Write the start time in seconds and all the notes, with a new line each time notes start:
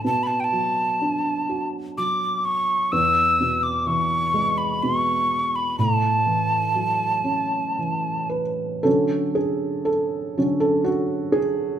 0.05 B2 A5
0.23 B5
0.27 A5
0.40 G5
0.44 A5
0.52 F#3
1.02 D4
1.49 F#4
1.98 F#3 D6
2.45 C#6
2.92 E2 E6
3.40 B2
3.63 D6
3.86 E3 C#6
4.34 G#3
4.58 B5
4.83 B2 C#6
5.56 B5
5.79 A2 A5
6.26 E3
6.75 F#3
7.24 C#4
7.79 E3
8.29 B4
8.83 D3 F#3 C#4 A4
9.35 G#4
9.85 A4
10.37 D3 F#3 C#4
10.60 A4
10.84 F#4
11.32 G#4